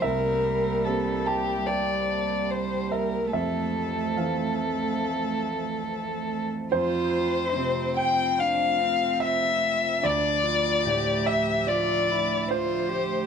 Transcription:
X:1
M:4/4
L:1/16
Q:1/4=73
K:F
V:1 name="Grand piano"
e6 a2 g6 e2 | e4 f8- f2 z2 | c6 g2 f4 e4 | d6 e2 d4 c4 |]
V:2 name="Grand piano" clef=bass
C,,4 [B,CG]12 | F,,4 [E,CA]12 | F,,4 C,12 | D,,4 A,,12 |]
V:3 name="Violin"
B4 A2 G2 d4 c2 B2 | A12- A3 z | c6 g2 f4 e4 | d6 e2 d4 c4 |]
V:4 name="Cello"
G,8 G,8 | A,12- A,3 z | F4 C4 D2 C6 | D2 F2 G4 F2 E2 F2 G2 |]
V:5 name="Ambient pad"
[B,Gc]16 | [E,A,c]16 | [A,Fc]16 | [F,A,c]16 |]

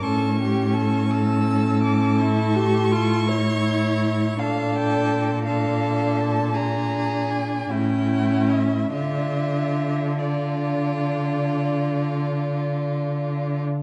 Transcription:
X:1
M:12/8
L:1/16
Q:3/8=53
K:Dm
V:1 name="Violin"
^c'6 e'4 d'2 c'12 | f2 g4 f4 a2 b4 _a2 g4 e2 | e6 d12 z6 |]
V:2 name="Violin"
A2 G2 A2 A12 ^c6 | A6 A6 _A6 E6 | F6 F16- F z |]
V:3 name="Viola"
^C12 E2 G2 F2 E6 | D6 D6 D6 ^C6 | D6 D16- D z |]
V:4 name="Cello" clef=bass
A,,24 | B,,16- B,,2 A,,6 | D,16- D,6- D, z |]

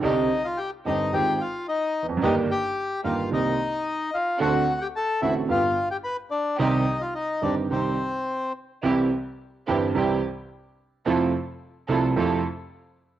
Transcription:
X:1
M:4/4
L:1/16
Q:1/4=109
K:Cm
V:1 name="Bandoneon"
[Ee]3 [Ff] [Gg]2 [Ee]2 [Gg]2 [Ff]2 [Ee]3 z | [Ee]2 [Gg]4 [Ff]2 [Ee]6 [Ff]2 | [^F^f]3 [Gg] [=A=a]2 [=E=e]2 [=F=f]3 [Gg] [=B=b]2 [Dd]2 | [Ee]3 [Ff] [Ee]2 [Dd]2 [Cc]6 z2 |
[K:C] z16 | z16 |]
V:2 name="String section"
[CDG]2 z4 [CDG]2 [CFA]2 z6 | [G,,B,EG]2 z4 [G,,B,EG]2 [CEB]2 z6 | [CD^F]2 z4 [CDF]2 [=B,=FG]2 z6 | [CEG]2 z4 [CEG]2 [CEG]2 z6 |
[K:C] [CEG]2 z4 [CEG]2 [CEG]2 z6 | [EFA]2 z4 [EFA]2 [EFA]2 z6 |]
V:3 name="Grand piano" clef=bass
[C,,C,D,G,CG]2 z4 [G,,,G,,D,G,CG]2 [A,,,A,,E,A,CF]2 z4 z/2 =E,,/2 F,,/2 ^F,,/2 | [G,,,G,,E,G,B,G]2 z4 [G,,,G,,E,G,B,G]2 [C,,C,E,B,CG]2 z6 | [D,,D,=A,C^F]2 z4 [=A,,,=A,,D,A,CF]2 [G,,,G,,D,G,=B,=F]2 z6 | [C,,C,E,G,CG]2 z4 [G,,,G,,E,G,CG]2 [C,,C,E,G,CG]2 z6 |
[K:C] [C,,C,E,G,CG]2 z4 [G,,,G,,E,G,CG]2 [C,,C,E,G,CG]2 z6 | [F,,C,F,A,E]2 z4 [C,,C,F,A,E]2 [F,,C,F,A,E]2 z6 |]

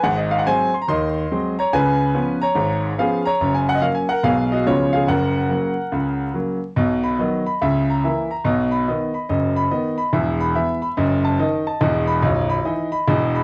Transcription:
X:1
M:4/4
L:1/16
Q:"Swing" 1/4=143
K:F#
V:1 name="Grand piano"
f d e f [^Bg]2 ^b a [db]6 [ca]2 | [Bg]6 [ca]6 [Ge]2 [ca]2- | [ca] g f d e g [Af]2 [Ge]2 [Fd]2 [Ec]2 [Ge]2 | [Af]12 z4 |
[K:B] d2 b2 d2 b2 e2 a2 e2 a2 | d2 b2 d2 b2 d2 b2 d2 b2 | e2 b2 e2 b2 d2 =a2 d2 a2 | d2 b2 d2 b2 d2 b2 d2 b2 |]
V:2 name="Grand piano" clef=bass
[G,,,G,,]4 [F,G,^B,]4 [D,,D,]4 [F,G,B,]4 | [C,,C,]4 [E,B,C]4 [G,,,G,,]4 [E,B,C]4 | [F,,,F,,]4 [F,A,C]4 [B,,,B,,F,G,B,]4 [C,,C,E,G,B,]4 | [F,,,F,,]4 [C,F,A,]4 [C,,C,]4 [C,F,A,]4 |
[K:B] [B,,,B,,]4 [D,F,B,]4 [C,,C,]4 [E,A,]4 | [B,,,B,,]4 [D,B,]4 [F,,,F,,]4 [D,B,]4 | [E,,,E,,]4 [E,B,]4 [F,,,F,,]4 [D,D]4 | [E,,,E,,]4 [B,,,,B,,,]4 [E,D]4 [E,,,E,,]4 |]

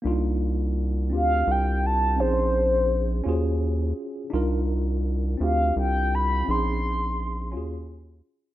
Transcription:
X:1
M:6/8
L:1/8
Q:3/8=56
K:Dphr
V:1 name="Soft synth lead"
z3 f g a | c4 z2 | z3 f g =b | c'4 z2 |]
V:2 name="Tine electric piano"
[B,DEF]3 [CDFG]3 | [C_DE_A]3 [DF_GA]3 | [DEFB]3 [CDFG]3 | [C_DE_A]3 [DF_GA]3 |]
V:3 name="Analog synth bass" clef=bass
C,,3 D,, C,,2 | B,,,3 E,,2 z | C,,3 D,, C,,2 | B,,,3 E,,2 z |]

